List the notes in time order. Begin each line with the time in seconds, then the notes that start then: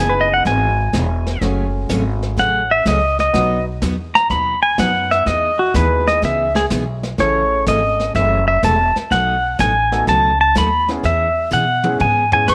Already playing: F#1 G#3 B3 D#4 E4 G#5
0.00 G#4
0.09 B4
0.21 D#5
0.34 F#5
0.45 G#1 E3 B3 D#4 G#4 G#5, brush sweep, kick, snare
0.93 E1 E3 B3 D#4 G#4, kick, snare, hi-hat pedal
1.27 snare
1.41 F#1 C#3 F#3 G#3 A3 C#4 F#4 G#4, brush sweep, kick, snare
1.89 G#1 C#3 F#3 A3 C#4 G#4, kick, snare, hi-hat pedal
2.22 snare
2.37 A1 C#3 F#3 A3 C#4 G#4 F#5, brush sweep, kick, snare
2.71 E5
2.85 C#2 C#3 F#3 A3 C#4 G#4 D#5, kick, snare, hi-hat pedal
3.19 D#5, snare
3.33 B1 B2 F#3 B3 D#4 F#4 B4, brush sweep, kick, snare
3.82 E2 B2 F#3 B3 D#4 F#4, kick, snare, hi-hat pedal
4.15 A#5, snare
4.30 D#2 B2 F#3 B3 D#4 F#4 B5, brush sweep, kick, snare
4.63 G#5
4.78 F#2 B2 F#3 B3 D#4 F#4 B4 F#5, kick, snare, hi-hat pedal
5.11 E5, snare
5.26 E2 E3 B3 D#4 G#4 D#5, brush sweep, kick, snare
5.59 F#4
5.74 D#2 E3 G#3 B3 D#4 E4 G#4 B4, kick, snare, hi-hat pedal
6.07 D#5, snare
6.22 C#2 E3 B3 D#4 G#4 E5, brush sweep, kick, snare
6.55 G#4, snare
6.70 B1 E3 B3 D#4 G#4, kick, snare, hi-hat pedal
7.03 snare
7.18 A1 C#3 E3 A3 C#4 E4 G#4 A4 C#5, brush sweep, kick, snare
7.66 G#1 C#3 E3 A3 C#4 G#4 D#5, kick, snare, hi-hat pedal
8.00 snare
8.15 F#1 C#3 E3 A3 C#4 G#4 E5, brush sweep, kick, snare
8.48 E5
8.63 E1 C#3 E3 A3 C#4 G#4 A5, kick, snare, hi-hat pedal
8.96 muted upright bass stroke, snare
9.11 B1 B2 F#3 A3 D#4 F#4 F#5, brush sweep, kick, snare
9.59 A1 B2 F#3 A3 D#4 F#4 G#5, kick, snare, hi-hat pedal
9.92 A3 B3 D#4 F#4 A4, snare
10.07 C#2 B2 F#3 A3 D#4 F#4 A5, brush sweep, kick, snare
10.41 A5
10.55 D#2 B2 F#3 A3 D#4 F#4 B5, kick, snare, hi-hat pedal
10.88 G#3 B3 C#4 E4 G#4, snare
11.03 E2 E3 B3 C#4 G#4 E5, brush sweep, kick, snare
11.51 B2 E3 B3 C#4 G#4 F#5, hi-hat pedal, high tom
11.84 G#3 B3 C#4 E4 G#4, high tom
12.00 G#2 E3 B3 C#4 G#4 G#5, mid tom
12.32 G#3 B3 C#4 E4 G#4 G#5, floor tom
12.48 F#2 E3 B3 C#4 G#4 C#5 C#6, snare, hi-hat pedal